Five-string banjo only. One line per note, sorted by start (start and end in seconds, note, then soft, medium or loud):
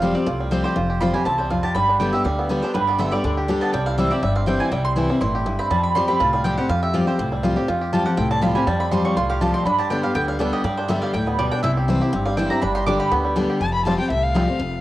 0.00 0.40 G3 medium
0.00 0.25 F4 medium
0.15 0.49 C4 medium
0.27 0.62 F4 medium
0.40 0.79 G3 medium
0.52 0.87 C4 medium
0.65 0.89 G4 medium
0.76 1.00 F4 medium
0.90 1.15 G4 medium
1.01 1.37 F4 medium
1.15 1.54 G4 medium
1.26 1.61 C4 medium
1.40 1.75 G3 medium
1.51 1.76 F4 medium
1.64 2.14 G4 medium
1.76 2.00 G3 medium
1.89 2.23 D4 medium
2.01 2.25 G3 medium
2.14 3.37 G4 medium
2.26 2.50 G3 medium
2.39 2.73 B3 medium
2.51 2.75 G3 medium
2.64 2.98 D4 medium
2.76 3.13 G3 medium
2.89 3.22 B3 medium
3.00 3.35 D3 medium
3.13 3.74 G3 medium
3.25 3.48 D4 medium
3.37 4.11 G4 medium
3.49 3.74 D4 medium
3.63 3.74 B3 medium
3.74 3.98 G3 medium
3.87 4.21 E4 medium
3.98 4.23 G3 medium
4.12 5.34 G4 medium
4.23 4.48 G3 medium
4.36 5.59 C4 medium
4.48 4.72 G3 medium
4.61 4.95 E4 medium
4.72 5.10 G3 medium
4.97 5.32 E3 medium
5.10 5.70 G3 medium
5.21 5.45 E4 medium
5.35 6.23 G4 medium
5.46 5.71 E4 medium
5.59 6.08 C4 medium
5.71 5.95 G3 medium
5.96 6.33 G3 medium
6.09 6.45 C4 medium
6.20 6.61 F4 medium
6.34 6.73 G3 medium
6.45 7.18 C4 medium
6.58 6.82 G4 medium
6.70 6.94 F4 medium
6.83 7.07 G4 medium
6.94 7.35 F4 medium
7.07 7.46 G4 medium
7.19 8.17 C4 medium
7.32 7.71 G3 medium
7.43 7.67 F4 medium
7.57 7.81 G4 medium
7.68 7.92 F4 medium
7.81 8.06 G4 medium
7.93 8.28 F4 medium
8.06 8.46 G4 medium
8.18 8.53 C4 medium
8.31 8.67 G3 medium
8.43 8.78 F4 medium
8.56 8.95 G4 medium
8.67 9.05 G3 medium
8.80 9.14 C4 medium
8.92 9.27 F3 medium
9.05 9.44 G3 medium
9.17 9.40 F4 medium
9.30 9.79 G4 medium
9.41 9.66 F4 medium
9.54 9.66 C4 medium
9.66 9.90 D4 medium
9.79 10.03 G4 medium
9.91 10.26 D4 medium
10.04 10.53 G4 medium
10.15 10.50 B3 medium
10.28 10.64 G3 medium
10.40 10.75 D4 medium
10.53 11.03 G4 medium
10.65 10.90 G3 medium
10.78 11.12 D4 medium
10.90 11.14 G3 medium
11.03 11.77 G4 medium
11.15 11.38 G3 medium
11.27 11.61 B3 medium
11.39 12.26 G3 medium
11.52 11.63 D4 medium
11.64 11.88 E4 medium
11.77 12.01 G4 medium
11.89 12.24 E4 medium
12.02 12.50 G4 medium
12.13 12.48 C4 medium
12.26 13.24 G3 medium
12.37 12.62 E4 medium
12.51 12.75 G4 medium
12.62 12.86 D4 medium
12.75 12.99 G4 medium
12.87 13.22 D4 medium
13.00 13.34 G4 medium
13.12 13.47 B3 medium
13.25 13.59 G3 medium
13.36 13.61 D4 medium
13.50 13.61 G4 medium
13.87 13.92 G3 medium
13.87 13.92 C4 medium
13.87 13.92 F4 medium
14.36 14.41 G3 medium
14.36 14.42 C4 medium
14.36 14.42 F4 medium